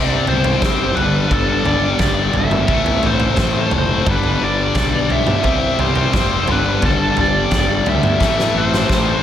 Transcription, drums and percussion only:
0, 0, Header, 1, 2, 480
1, 0, Start_track
1, 0, Tempo, 688863
1, 1871, Time_signature, 4, 2, 24, 8
1, 6431, End_track
2, 0, Start_track
2, 0, Title_t, "Drums"
2, 190, Note_on_c, 9, 43, 69
2, 260, Note_off_c, 9, 43, 0
2, 309, Note_on_c, 9, 43, 82
2, 379, Note_off_c, 9, 43, 0
2, 431, Note_on_c, 9, 47, 66
2, 432, Note_on_c, 9, 36, 102
2, 439, Note_on_c, 9, 38, 68
2, 501, Note_off_c, 9, 47, 0
2, 502, Note_off_c, 9, 36, 0
2, 508, Note_off_c, 9, 38, 0
2, 675, Note_on_c, 9, 43, 62
2, 745, Note_off_c, 9, 43, 0
2, 913, Note_on_c, 9, 36, 92
2, 915, Note_on_c, 9, 43, 73
2, 982, Note_off_c, 9, 36, 0
2, 985, Note_off_c, 9, 43, 0
2, 1153, Note_on_c, 9, 43, 55
2, 1222, Note_off_c, 9, 43, 0
2, 1387, Note_on_c, 9, 43, 75
2, 1390, Note_on_c, 9, 36, 83
2, 1394, Note_on_c, 9, 38, 67
2, 1456, Note_off_c, 9, 43, 0
2, 1460, Note_off_c, 9, 36, 0
2, 1464, Note_off_c, 9, 38, 0
2, 1626, Note_on_c, 9, 43, 64
2, 1696, Note_off_c, 9, 43, 0
2, 1750, Note_on_c, 9, 47, 70
2, 1820, Note_off_c, 9, 47, 0
2, 1868, Note_on_c, 9, 43, 68
2, 1870, Note_on_c, 9, 36, 103
2, 1938, Note_off_c, 9, 43, 0
2, 1939, Note_off_c, 9, 36, 0
2, 1992, Note_on_c, 9, 43, 73
2, 2062, Note_off_c, 9, 43, 0
2, 2110, Note_on_c, 9, 43, 71
2, 2179, Note_off_c, 9, 43, 0
2, 2228, Note_on_c, 9, 43, 71
2, 2297, Note_off_c, 9, 43, 0
2, 2344, Note_on_c, 9, 47, 65
2, 2350, Note_on_c, 9, 36, 105
2, 2352, Note_on_c, 9, 38, 72
2, 2414, Note_off_c, 9, 47, 0
2, 2419, Note_off_c, 9, 36, 0
2, 2422, Note_off_c, 9, 38, 0
2, 2587, Note_on_c, 9, 43, 70
2, 2657, Note_off_c, 9, 43, 0
2, 2832, Note_on_c, 9, 36, 101
2, 2835, Note_on_c, 9, 43, 75
2, 2835, Note_on_c, 9, 47, 70
2, 2902, Note_off_c, 9, 36, 0
2, 2904, Note_off_c, 9, 43, 0
2, 2904, Note_off_c, 9, 47, 0
2, 2950, Note_on_c, 9, 43, 59
2, 3019, Note_off_c, 9, 43, 0
2, 3310, Note_on_c, 9, 43, 70
2, 3313, Note_on_c, 9, 36, 102
2, 3317, Note_on_c, 9, 38, 70
2, 3379, Note_off_c, 9, 43, 0
2, 3383, Note_off_c, 9, 36, 0
2, 3387, Note_off_c, 9, 38, 0
2, 3554, Note_on_c, 9, 43, 63
2, 3624, Note_off_c, 9, 43, 0
2, 3669, Note_on_c, 9, 47, 66
2, 3739, Note_off_c, 9, 47, 0
2, 3788, Note_on_c, 9, 43, 70
2, 3792, Note_on_c, 9, 36, 91
2, 3858, Note_off_c, 9, 43, 0
2, 3862, Note_off_c, 9, 36, 0
2, 4034, Note_on_c, 9, 43, 61
2, 4103, Note_off_c, 9, 43, 0
2, 4149, Note_on_c, 9, 43, 72
2, 4218, Note_off_c, 9, 43, 0
2, 4274, Note_on_c, 9, 47, 69
2, 4275, Note_on_c, 9, 36, 104
2, 4281, Note_on_c, 9, 38, 65
2, 4343, Note_off_c, 9, 47, 0
2, 4345, Note_off_c, 9, 36, 0
2, 4351, Note_off_c, 9, 38, 0
2, 4512, Note_on_c, 9, 43, 72
2, 4582, Note_off_c, 9, 43, 0
2, 4753, Note_on_c, 9, 43, 76
2, 4756, Note_on_c, 9, 36, 92
2, 4823, Note_off_c, 9, 43, 0
2, 4826, Note_off_c, 9, 36, 0
2, 4994, Note_on_c, 9, 43, 69
2, 5064, Note_off_c, 9, 43, 0
2, 5235, Note_on_c, 9, 43, 65
2, 5238, Note_on_c, 9, 36, 97
2, 5242, Note_on_c, 9, 38, 67
2, 5304, Note_off_c, 9, 43, 0
2, 5308, Note_off_c, 9, 36, 0
2, 5312, Note_off_c, 9, 38, 0
2, 5479, Note_on_c, 9, 43, 72
2, 5548, Note_off_c, 9, 43, 0
2, 5597, Note_on_c, 9, 47, 70
2, 5667, Note_off_c, 9, 47, 0
2, 5718, Note_on_c, 9, 36, 95
2, 5725, Note_on_c, 9, 38, 48
2, 5787, Note_off_c, 9, 36, 0
2, 5795, Note_off_c, 9, 38, 0
2, 5849, Note_on_c, 9, 38, 47
2, 5919, Note_off_c, 9, 38, 0
2, 6088, Note_on_c, 9, 38, 49
2, 6158, Note_off_c, 9, 38, 0
2, 6198, Note_on_c, 9, 36, 98
2, 6208, Note_on_c, 9, 38, 56
2, 6267, Note_off_c, 9, 36, 0
2, 6278, Note_off_c, 9, 38, 0
2, 6431, End_track
0, 0, End_of_file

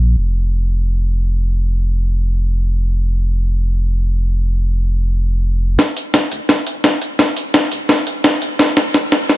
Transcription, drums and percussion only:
0, 0, Header, 1, 2, 480
1, 0, Start_track
1, 0, Key_signature, -2, "major"
1, 0, Tempo, 350877
1, 239, Time_signature, 4, 2, 24, 8
1, 12820, End_track
2, 0, Start_track
2, 0, Title_t, "Drums"
2, 7918, Note_on_c, 9, 36, 86
2, 7920, Note_on_c, 9, 38, 49
2, 7920, Note_on_c, 9, 42, 92
2, 8054, Note_off_c, 9, 36, 0
2, 8057, Note_off_c, 9, 38, 0
2, 8057, Note_off_c, 9, 42, 0
2, 8162, Note_on_c, 9, 42, 65
2, 8298, Note_off_c, 9, 42, 0
2, 8397, Note_on_c, 9, 36, 100
2, 8398, Note_on_c, 9, 38, 50
2, 8398, Note_on_c, 9, 42, 97
2, 8534, Note_off_c, 9, 36, 0
2, 8535, Note_off_c, 9, 38, 0
2, 8535, Note_off_c, 9, 42, 0
2, 8640, Note_on_c, 9, 42, 69
2, 8777, Note_off_c, 9, 42, 0
2, 8878, Note_on_c, 9, 36, 97
2, 8880, Note_on_c, 9, 38, 51
2, 8880, Note_on_c, 9, 42, 98
2, 9015, Note_off_c, 9, 36, 0
2, 9017, Note_off_c, 9, 38, 0
2, 9017, Note_off_c, 9, 42, 0
2, 9120, Note_on_c, 9, 42, 68
2, 9256, Note_off_c, 9, 42, 0
2, 9357, Note_on_c, 9, 36, 94
2, 9358, Note_on_c, 9, 38, 53
2, 9358, Note_on_c, 9, 42, 92
2, 9494, Note_off_c, 9, 36, 0
2, 9494, Note_off_c, 9, 38, 0
2, 9494, Note_off_c, 9, 42, 0
2, 9598, Note_on_c, 9, 42, 66
2, 9734, Note_off_c, 9, 42, 0
2, 9836, Note_on_c, 9, 36, 91
2, 9837, Note_on_c, 9, 38, 59
2, 9837, Note_on_c, 9, 42, 95
2, 9973, Note_off_c, 9, 36, 0
2, 9974, Note_off_c, 9, 38, 0
2, 9974, Note_off_c, 9, 42, 0
2, 10076, Note_on_c, 9, 42, 66
2, 10213, Note_off_c, 9, 42, 0
2, 10316, Note_on_c, 9, 36, 99
2, 10317, Note_on_c, 9, 38, 62
2, 10317, Note_on_c, 9, 42, 90
2, 10452, Note_off_c, 9, 36, 0
2, 10453, Note_off_c, 9, 38, 0
2, 10453, Note_off_c, 9, 42, 0
2, 10555, Note_on_c, 9, 42, 67
2, 10692, Note_off_c, 9, 42, 0
2, 10795, Note_on_c, 9, 36, 94
2, 10795, Note_on_c, 9, 38, 67
2, 10795, Note_on_c, 9, 42, 89
2, 10932, Note_off_c, 9, 36, 0
2, 10932, Note_off_c, 9, 38, 0
2, 10932, Note_off_c, 9, 42, 0
2, 11037, Note_on_c, 9, 42, 67
2, 11174, Note_off_c, 9, 42, 0
2, 11275, Note_on_c, 9, 36, 95
2, 11276, Note_on_c, 9, 38, 65
2, 11276, Note_on_c, 9, 42, 85
2, 11412, Note_off_c, 9, 36, 0
2, 11413, Note_off_c, 9, 38, 0
2, 11413, Note_off_c, 9, 42, 0
2, 11516, Note_on_c, 9, 42, 66
2, 11653, Note_off_c, 9, 42, 0
2, 11754, Note_on_c, 9, 36, 91
2, 11758, Note_on_c, 9, 38, 75
2, 11758, Note_on_c, 9, 42, 89
2, 11891, Note_off_c, 9, 36, 0
2, 11895, Note_off_c, 9, 38, 0
2, 11895, Note_off_c, 9, 42, 0
2, 11995, Note_on_c, 9, 38, 74
2, 11995, Note_on_c, 9, 42, 64
2, 11995, Note_on_c, 9, 69, 59
2, 12132, Note_off_c, 9, 38, 0
2, 12132, Note_off_c, 9, 42, 0
2, 12132, Note_off_c, 9, 69, 0
2, 12235, Note_on_c, 9, 36, 100
2, 12236, Note_on_c, 9, 38, 80
2, 12236, Note_on_c, 9, 42, 89
2, 12360, Note_on_c, 9, 69, 26
2, 12372, Note_off_c, 9, 36, 0
2, 12373, Note_off_c, 9, 38, 0
2, 12373, Note_off_c, 9, 42, 0
2, 12478, Note_off_c, 9, 69, 0
2, 12478, Note_on_c, 9, 38, 81
2, 12478, Note_on_c, 9, 42, 68
2, 12478, Note_on_c, 9, 69, 58
2, 12600, Note_off_c, 9, 69, 0
2, 12600, Note_on_c, 9, 69, 26
2, 12614, Note_off_c, 9, 38, 0
2, 12614, Note_off_c, 9, 42, 0
2, 12714, Note_on_c, 9, 36, 101
2, 12716, Note_on_c, 9, 38, 81
2, 12716, Note_on_c, 9, 42, 92
2, 12737, Note_off_c, 9, 69, 0
2, 12820, Note_off_c, 9, 36, 0
2, 12820, Note_off_c, 9, 38, 0
2, 12820, Note_off_c, 9, 42, 0
2, 12820, End_track
0, 0, End_of_file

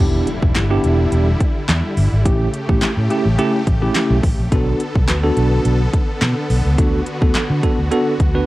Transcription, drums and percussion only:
0, 0, Header, 1, 2, 480
1, 0, Start_track
1, 0, Tempo, 566038
1, 1912, Time_signature, 4, 2, 24, 8
1, 7175, End_track
2, 0, Start_track
2, 0, Title_t, "Drums"
2, 230, Note_on_c, 9, 42, 91
2, 315, Note_off_c, 9, 42, 0
2, 361, Note_on_c, 9, 36, 100
2, 446, Note_off_c, 9, 36, 0
2, 469, Note_on_c, 9, 38, 91
2, 471, Note_on_c, 9, 39, 107
2, 472, Note_on_c, 9, 42, 84
2, 474, Note_off_c, 9, 39, 0
2, 474, Note_on_c, 9, 39, 101
2, 554, Note_off_c, 9, 38, 0
2, 556, Note_off_c, 9, 42, 0
2, 559, Note_off_c, 9, 39, 0
2, 712, Note_on_c, 9, 42, 76
2, 797, Note_off_c, 9, 42, 0
2, 951, Note_on_c, 9, 42, 89
2, 1036, Note_off_c, 9, 42, 0
2, 1192, Note_on_c, 9, 42, 84
2, 1193, Note_on_c, 9, 36, 97
2, 1277, Note_off_c, 9, 36, 0
2, 1277, Note_off_c, 9, 42, 0
2, 1430, Note_on_c, 9, 38, 101
2, 1433, Note_on_c, 9, 39, 91
2, 1434, Note_on_c, 9, 42, 93
2, 1515, Note_off_c, 9, 38, 0
2, 1518, Note_off_c, 9, 39, 0
2, 1518, Note_off_c, 9, 42, 0
2, 1672, Note_on_c, 9, 46, 83
2, 1757, Note_off_c, 9, 46, 0
2, 1912, Note_on_c, 9, 36, 109
2, 1913, Note_on_c, 9, 42, 100
2, 1997, Note_off_c, 9, 36, 0
2, 1997, Note_off_c, 9, 42, 0
2, 2150, Note_on_c, 9, 42, 95
2, 2235, Note_off_c, 9, 42, 0
2, 2281, Note_on_c, 9, 36, 99
2, 2366, Note_off_c, 9, 36, 0
2, 2389, Note_on_c, 9, 38, 91
2, 2392, Note_on_c, 9, 39, 109
2, 2392, Note_on_c, 9, 42, 81
2, 2394, Note_off_c, 9, 39, 0
2, 2394, Note_on_c, 9, 39, 102
2, 2474, Note_off_c, 9, 38, 0
2, 2477, Note_off_c, 9, 42, 0
2, 2479, Note_off_c, 9, 39, 0
2, 2632, Note_on_c, 9, 42, 76
2, 2717, Note_off_c, 9, 42, 0
2, 2871, Note_on_c, 9, 42, 89
2, 2956, Note_off_c, 9, 42, 0
2, 3112, Note_on_c, 9, 42, 86
2, 3113, Note_on_c, 9, 36, 100
2, 3197, Note_off_c, 9, 36, 0
2, 3197, Note_off_c, 9, 42, 0
2, 3350, Note_on_c, 9, 38, 95
2, 3353, Note_on_c, 9, 39, 122
2, 3353, Note_on_c, 9, 42, 97
2, 3354, Note_off_c, 9, 39, 0
2, 3354, Note_on_c, 9, 39, 93
2, 3435, Note_off_c, 9, 38, 0
2, 3438, Note_off_c, 9, 39, 0
2, 3438, Note_off_c, 9, 42, 0
2, 3591, Note_on_c, 9, 36, 98
2, 3592, Note_on_c, 9, 46, 86
2, 3675, Note_off_c, 9, 36, 0
2, 3676, Note_off_c, 9, 46, 0
2, 3832, Note_on_c, 9, 36, 109
2, 3833, Note_on_c, 9, 42, 97
2, 3917, Note_off_c, 9, 36, 0
2, 3917, Note_off_c, 9, 42, 0
2, 4070, Note_on_c, 9, 42, 96
2, 4155, Note_off_c, 9, 42, 0
2, 4201, Note_on_c, 9, 36, 102
2, 4286, Note_off_c, 9, 36, 0
2, 4310, Note_on_c, 9, 38, 87
2, 4312, Note_on_c, 9, 39, 102
2, 4312, Note_on_c, 9, 42, 80
2, 4314, Note_off_c, 9, 39, 0
2, 4314, Note_on_c, 9, 39, 100
2, 4394, Note_off_c, 9, 38, 0
2, 4397, Note_off_c, 9, 42, 0
2, 4399, Note_off_c, 9, 39, 0
2, 4552, Note_on_c, 9, 42, 76
2, 4637, Note_off_c, 9, 42, 0
2, 4792, Note_on_c, 9, 42, 90
2, 4876, Note_off_c, 9, 42, 0
2, 5032, Note_on_c, 9, 42, 90
2, 5033, Note_on_c, 9, 36, 102
2, 5117, Note_off_c, 9, 42, 0
2, 5118, Note_off_c, 9, 36, 0
2, 5271, Note_on_c, 9, 38, 103
2, 5274, Note_on_c, 9, 39, 91
2, 5274, Note_on_c, 9, 42, 93
2, 5356, Note_off_c, 9, 38, 0
2, 5359, Note_off_c, 9, 39, 0
2, 5359, Note_off_c, 9, 42, 0
2, 5512, Note_on_c, 9, 46, 84
2, 5597, Note_off_c, 9, 46, 0
2, 5753, Note_on_c, 9, 36, 111
2, 5753, Note_on_c, 9, 42, 98
2, 5838, Note_off_c, 9, 36, 0
2, 5838, Note_off_c, 9, 42, 0
2, 5991, Note_on_c, 9, 42, 92
2, 6075, Note_off_c, 9, 42, 0
2, 6121, Note_on_c, 9, 36, 104
2, 6206, Note_off_c, 9, 36, 0
2, 6229, Note_on_c, 9, 38, 86
2, 6232, Note_on_c, 9, 39, 110
2, 6232, Note_on_c, 9, 42, 86
2, 6234, Note_off_c, 9, 39, 0
2, 6234, Note_on_c, 9, 39, 97
2, 6314, Note_off_c, 9, 38, 0
2, 6317, Note_off_c, 9, 42, 0
2, 6319, Note_off_c, 9, 39, 0
2, 6472, Note_on_c, 9, 36, 83
2, 6473, Note_on_c, 9, 42, 75
2, 6556, Note_off_c, 9, 36, 0
2, 6558, Note_off_c, 9, 42, 0
2, 6712, Note_on_c, 9, 42, 86
2, 6797, Note_off_c, 9, 42, 0
2, 6952, Note_on_c, 9, 42, 89
2, 6953, Note_on_c, 9, 36, 98
2, 7037, Note_off_c, 9, 42, 0
2, 7038, Note_off_c, 9, 36, 0
2, 7175, End_track
0, 0, End_of_file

